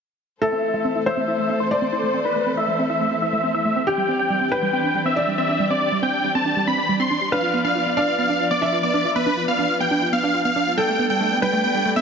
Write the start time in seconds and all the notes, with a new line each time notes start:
0.41 E3 A3 C4 A4 C5 E5
0.52 C4
0.63 E4
0.74 A3 E5
0.85 C4
0.96 E4
1.06 A3 C5 E5
1.17 C4
1.28 E4 E5
1.39 A3
1.49 C4
1.60 E4 C5
1.71 A3 D5
1.82 C4
1.93 E4 C5
2.03 A3
2.14 C4
2.25 E4 B4
2.36 A3
2.47 C4
2.57 E4 E5
2.68 A3
2.79 C4
2.90 E4 E5
3.01 A3
3.11 C4
3.22 E4 E5
3.33 A3
3.44 C4
3.54 E4 E5
3.65 A3
3.76 C4
3.87 D4 G4 D5 G5
3.98 G3
4.08 C4
4.19 D4 G5
4.30 G3
4.41 C4
4.52 D4 B4 G5
4.62 G3
4.73 C4 G5
4.84 D4
4.95 G3
5.06 C4 E5
5.16 D4 D5
5.27 G3
5.38 C4 E5
5.49 D4
5.60 G3
5.70 C4 D5
5.81 D4
5.92 G3
6.03 C4 G5
6.13 D4
6.24 G3
6.35 C4 A5
6.46 D4
6.57 G3
6.67 C4 B5
6.78 D4
6.89 G3
7.00 C4 C6
7.11 D4
7.21 G3
7.32 F3 B3 D4 B4 F5
7.43 F4
7.54 B3
7.64 D4 F5
7.75 F4
7.86 B3
7.97 D4 D5 F5
8.08 F4
8.18 B3 F5
8.29 D4
8.40 F4
8.51 B3 D5
8.62 D4 E5
8.72 F4
8.83 B3 D5
8.94 D4
9.05 F4
9.16 B3 B4
9.26 D4
9.37 F4
9.48 B3 F5
9.59 D4
9.70 F4
9.80 B3 G5
9.91 D4
10.02 F4
10.13 B3 F5
10.24 D4
10.34 F4
10.45 B3 F5
10.56 D4
10.67 F4
10.77 G3 A4 D5 G5
10.88 A3
10.99 B3
11.10 G3 G5
11.21 A3
11.31 B3
11.42 G3 B4 G5
11.53 A3
11.64 B3 G5
11.75 G3
11.85 A3
11.96 B3 E5